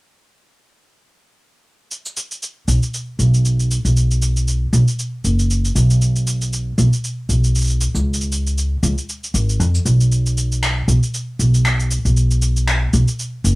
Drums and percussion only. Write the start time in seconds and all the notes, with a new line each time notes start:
1.91 shaker
2.06 shaker
2.17 shaker
2.31 shaker
2.43 shaker
2.68 shaker
2.83 shaker
2.94 shaker
3.20 shaker
3.34 shaker
3.45 shaker
3.60 shaker
3.71 shaker
3.85 shaker
3.97 shaker
4.11 shaker
4.22 shaker
4.37 shaker
4.48 shaker
4.74 shaker
4.88 shaker
4.99 shaker
5.25 shaker
5.39 shaker
5.51 shaker
5.65 shaker
5.76 shaker
5.90 shaker
6.02 shaker
6.16 shaker
6.27 shaker
6.42 shaker
6.53 shaker
6.79 shaker
6.93 shaker
7.04 shaker
7.30 shaker
7.44 shaker
7.56 shaker
7.58 shaker
7.61 shaker
7.64 shaker
7.67 shaker
7.70 shaker
7.81 shaker
7.96 shaker
8.14 shaker
8.21 shaker
8.32 shaker
8.47 shaker
8.58 shaker
8.84 shaker
8.98 shaker
9.09 shaker
9.24 shaker
9.35 shaker
9.49 shaker
9.61 shaker
9.75 shaker
9.86 shaker
10.01 shaker
10.12 shaker
10.26 shaker
10.38 shaker
10.52 shaker
10.63 finger snap, shaker
10.89 shaker
11.03 shaker
11.14 shaker
11.40 shaker
11.54 shaker
11.65 finger snap, shaker
11.80 shaker
11.91 shaker
12.06 shaker
12.17 shaker
12.31 shaker
12.42 shaker
12.57 shaker
12.67 finger snap, shaker
12.93 shaker
13.08 shaker
13.19 shaker
13.45 shaker